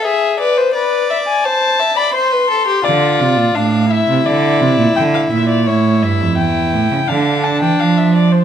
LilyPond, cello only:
\new Staff \with { instrumentName = "Cello" } { \clef bass \time 4/4 \key d \minor \tempo 4 = 85 r1 | d8 c16 bes,16 a,8. c16 d8 c16 bes,16 d8 bes,8 | a,8 g,16 f,16 e,8 a,16 cis16 d8. e16 f4 | }